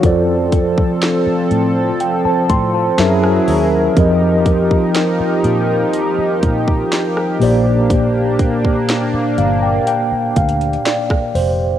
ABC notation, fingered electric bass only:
X:1
M:4/4
L:1/8
Q:1/4=61
K:Bb
V:1 name="Fingered electric bass" clef=bass
F,,2 z A,, z A,, ^F,, E,, | F,,2 z B,, z B,, z B,,,- | B,,,2 z G,,, z D,, z F,,, |]